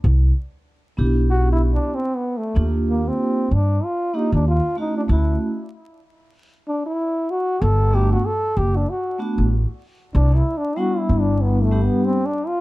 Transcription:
0.04 C2
0.97 B1 B3 D4 E4 G4
1.30 F#4
1.52 E4
1.73 D4
1.95 C4
2.16 B3
2.37 A3
2.55 D#2 A#3 D4 F4 G4
2.89 A#3
3.08 C4
3.51 G2 D4
3.84 F4
4.14 A#3 D4 D#4 F4 G4
4.32 D#2 D4
4.48 F4
4.76 A3 C#4 D#4 E4 F#4
4.97 D4
5.08 D2 A3 C#4 E4 F#4
6.67 D4
6.86 E4
7.31 F#4
7.62 G1 A4
7.92 A3 B3 D4 F#4 G4
8.13 F#4
8.26 A4
8.57 F#1 G4
8.76 D4
8.90 F#4
9.19 A3 B3 D4 F#4
9.38 A1
10.15 C2 D4
10.36 E4
10.57 D4
10.77 G3 B3 D4 E4 F#4
10.99 E4
11.09 G1
11.21 D4
11.43 B3
11.63 A3
11.71 G3 B3 D4 G4
11.84 B3
12.05 C4
12.26 D4
12.47 F4

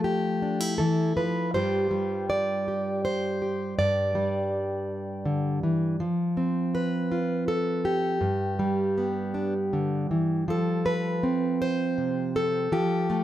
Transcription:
Already playing: F3 A3
0.04 G4
0.42 D4
0.60 E4
0.78 E3 A4
1.17 F3 B4
1.54 G2 G3 F4 G4 C5
1.91 G3
2.30 D5
2.68 G4
3.05 C5
3.42 G4
3.79 G2 D5
4.15 G3
5.25 D3
5.63 E3
6.00 F3
6.37 C4
6.75 B4
7.12 F4
7.48 A4
7.85 G4
8.21 G2
8.59 G3
8.98 B3
9.34 D4
9.73 D3
10.11 E3
10.48 F3 A4
10.86 B4
11.23 C4
11.62 C5
11.98 C3
12.36 A4
12.72 F3 G4
13.10 A3

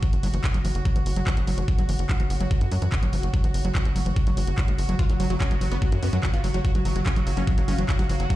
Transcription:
Already playing: F#4 C#5 F#5
0.03 F3, kick, closed hi-hat
0.13 F#1, closed hi-hat
0.23 F#1 F#3, open hi-hat
0.34 F#1 F3, closed hi-hat
0.44 kick, clap, closed hi-hat
0.54 F#1 F#3, closed hi-hat
0.65 F#1 F3, open hi-hat
0.75 F#1, closed hi-hat
0.85 F#3, kick, closed hi-hat
0.96 F#1 F3, closed hi-hat
1.06 F#1, open hi-hat
1.16 F#1 F#3, closed hi-hat
1.27 F3, kick, clap, closed hi-hat
1.37 F#1, closed hi-hat
1.47 F#1 F#3, open hi-hat
1.58 F#1 F3, closed hi-hat
1.68 kick, closed hi-hat
1.78 F#1 F#3, closed hi-hat
1.89 F#1 F3, open hi-hat
1.99 F#1, closed hi-hat
2.09 F#3, kick, clap, closed hi-hat
2.20 F#1 F3, closed hi-hat
2.30 F#1, open hi-hat
2.40 F#1 F#3, closed hi-hat
2.51 F3, kick, closed hi-hat
2.61 F#2, closed hi-hat
2.72 F#2 F#3, open hi-hat
2.82 F#2 F3, closed hi-hat
2.92 kick, clap, closed hi-hat
3.03 F#1 F#3, closed hi-hat
3.13 F#1 F3, open hi-hat
3.23 F#1, closed hi-hat
3.34 F#3, kick, closed hi-hat
3.44 F#1 F3, closed hi-hat
3.54 F#1, open hi-hat
3.65 F#1 F#3, closed hi-hat
3.75 F3, kick, clap, closed hi-hat
3.85 F#1, closed hi-hat
3.96 F#1 F#3, open hi-hat
4.06 F#1 F3, closed hi-hat
4.16 kick, closed hi-hat
4.27 F#1 F#3, closed hi-hat
4.37 F#1 F#3, open hi-hat
4.47 F#1, closed hi-hat
4.58 G3, kick, clap, closed hi-hat
4.68 F#1 A#3, closed hi-hat
4.78 F#1, open hi-hat
4.89 F#1 F#3, closed hi-hat
4.99 F3 F4, kick, closed hi-hat
5.09 F#1 F#3, closed hi-hat
5.20 F#1 F#3, open hi-hat
5.28 F#1 F3 F#3 F5, closed hi-hat
5.40 C#4, kick, clap, closed hi-hat
5.51 F#1 F#3, closed hi-hat
5.61 F#1 F3 F#3, open hi-hat
5.72 F#1 B3, closed hi-hat
5.82 F#3, kick, closed hi-hat
5.92 F#2 F3 F#3, closed hi-hat
6.03 F#2 B3, open hi-hat
6.13 F#2 F#3, closed hi-hat
6.23 F3 F#3, kick, clap, closed hi-hat
6.34 F#1 F4, closed hi-hat
6.44 F#1 F#3, open hi-hat
6.54 F#1 F3 F#3, closed hi-hat
6.65 F#4, kick, closed hi-hat
6.75 F#1 F#3, closed hi-hat
6.85 F#1 F3 F#3, open hi-hat
6.96 F#1 F#3, closed hi-hat
7.06 F#3 C#4, kick, clap, closed hi-hat
7.16 F#1 F3 F#3, closed hi-hat
7.27 F#1 F#3, open hi-hat
7.37 F#1 F#3 C#4, closed hi-hat
7.47 F3 F#3, kick, closed hi-hat
7.58 F#1 F#3, closed hi-hat
7.68 F#1 F#3 C#4, open hi-hat
7.78 F#1 F3 F#3, closed hi-hat
7.89 F#3, kick, clap, closed hi-hat
7.99 F#1 F#3 F#4, closed hi-hat
8.09 F#1 F3 F#3, open hi-hat
8.20 F#1 F#3, closed hi-hat
8.30 F#3 F#4, kick, closed hi-hat

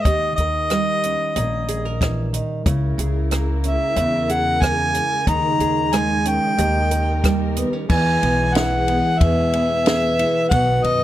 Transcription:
0.02 D#2 D#3 D#5, kick, closed hi-hat
0.07 G4
0.36 D#2 D#5, closed hi-hat
0.40 A#4
0.70 G3, cross-stick, closed hi-hat
1.03 C#4, closed hi-hat
1.36 A#1 A#2, closed hi-hat
1.68 G#4, closed hi-hat
1.85 A#4
2.01 E3, kick, cross-stick, closed hi-hat
2.33 D#3, closed hi-hat
2.66 C#2 C#3 G#3 E4 A#4, kick, closed hi-hat
2.98 C#2 G#4, closed hi-hat
3.31 A#3, cross-stick, closed hi-hat
3.64 C#4 E5, closed hi-hat
3.96 E2 C#3, closed hi-hat
4.29 G#4 F#5, closed hi-hat
4.62 A#3 G#5, kick, cross-stick, closed hi-hat
4.94 closed hi-hat
5.26 D#2 D#3 D#4 A#5, kick, closed hi-hat
5.59 D#2 G#4, closed hi-hat
5.92 G#3 G#5, cross-stick, closed hi-hat
6.25 C#4 G5, closed hi-hat
6.58 D#2 D#3 G3 G4 A#4, closed hi-hat
6.91 A#4, closed hi-hat
7.24 G3, kick, cross-stick, closed hi-hat
7.56 B3, closed hi-hat
7.73 C#4
7.89 E2 E3 G#3 B3 G#4 G#5, kick, crash
8.23 B1 B3, ride
8.55 E4 F#5, snare, ride
8.88 B3, ride
9.19 E2 B2 E5, kick, ride
9.53 B3, ride
9.86 G#4, snare, ride
10.19 E4, ride
10.49 B1 B2 D#3 F#3 F#4 F#5, kick, ride
10.84 F#2 D#4 D#5, ride

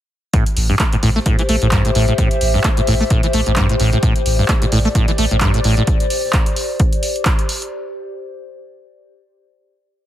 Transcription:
0.33 A2 G4, kick, closed hi-hat
0.46 C5, closed hi-hat
0.57 A1, open hi-hat
0.70 G2
0.79 A3, kick, clap, closed hi-hat
0.93 A2, closed hi-hat
1.03 A1 A2, open hi-hat
1.16 A3
1.26 A2, kick, closed hi-hat
1.37 E3 E5, closed hi-hat
1.49 A1 A3, open hi-hat
1.62 A1 A2, closed hi-hat
1.71 G2, kick, clap, closed hi-hat
1.85 A2, closed hi-hat
1.95 A1 A2, open hi-hat
2.08 A2, closed hi-hat
2.18 A2, kick, closed hi-hat
2.31 closed hi-hat
2.41 A1, open hi-hat
2.54 G2
2.64 A3, kick, clap, closed hi-hat
2.77 A2, closed hi-hat
2.87 A1 A2, open hi-hat
3.00 A3
3.10 A2, kick, closed hi-hat
3.23 E3, closed hi-hat
3.33 A1 A3, open hi-hat
3.46 A1 A2, closed hi-hat
3.56 G2, kick, clap, closed hi-hat
3.69 A2, closed hi-hat
3.80 A1 A2, open hi-hat
3.93 A2, closed hi-hat
4.03 A2, kick, closed hi-hat
4.16 D5, closed hi-hat
4.26 A1, open hi-hat
4.39 G2
4.48 A3, kick, clap, closed hi-hat
4.62 A2, closed hi-hat
4.72 A1 A2, open hi-hat
4.85 A3
4.95 A2, kick, closed hi-hat
5.08 E3, closed hi-hat
5.18 A1 A3, open hi-hat
5.31 A1 A2, closed hi-hat
5.41 G2, kick, clap, closed hi-hat
5.54 A2, closed hi-hat
5.64 A1 A2, open hi-hat
5.77 A2, closed hi-hat
5.87 kick, closed hi-hat
6.00 closed hi-hat
6.10 open hi-hat
6.33 kick, clap, closed hi-hat
6.46 closed hi-hat
6.56 open hi-hat
6.80 kick, closed hi-hat
6.93 closed hi-hat
7.03 open hi-hat
7.16 closed hi-hat
7.25 kick, clap, closed hi-hat
7.39 closed hi-hat
7.49 open hi-hat
7.62 closed hi-hat

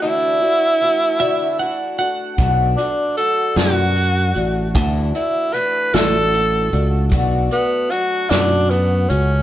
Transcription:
0.02 D3 E3 A3 D4 E4 F#4
0.41 A3 D4 F#4
0.81 E3 A3 D4 F#4
1.19 D3 E3 A3 D4 F#4 E5
1.59 E3 A3 D4 F#4 F#5
1.98 A3 D4 F#4 F#5
2.38 B1 B2 F#3 A3 D4 F#4, kick, closed hi-hat
2.77 A3 D4 F#4, closed hi-hat
3.17 F#3 A3 D4 F#4 A4, closed hi-hat
3.56 F#2 B2 F#3 A3 D4 F#4, snare, closed hi-hat
3.96 F#3 A3 D4 F#4, closed hi-hat
4.35 A1 A3 D4 F#4, closed hi-hat
4.74 D2 D3 E3 A3 D4 F#4, kick, closed hi-hat
5.14 A3 D4 E4 F#4, closed hi-hat
5.53 E3 A3 D4 F#4 B4, closed hi-hat
5.93 A1 D3 E3 A3 D4 F#4 A4, snare, closed hi-hat
6.33 E3 A3 D4 F#4, closed hi-hat
6.72 C#2 A3 D4 F#4, closed hi-hat
7.12 B1 B2 F#3 A3 D4 F#4, kick, closed hi-hat
7.51 A3 B3 D4 F#4, closed hi-hat
7.91 F#3 A3 D4 F#4, closed hi-hat
8.30 F#2 B2 F#3 A3 D4 F#4, snare, closed hi-hat
8.70 F#3 A3 B3 D4 F#4, closed hi-hat
9.10 C#2 A3 C#4 F#4, closed hi-hat

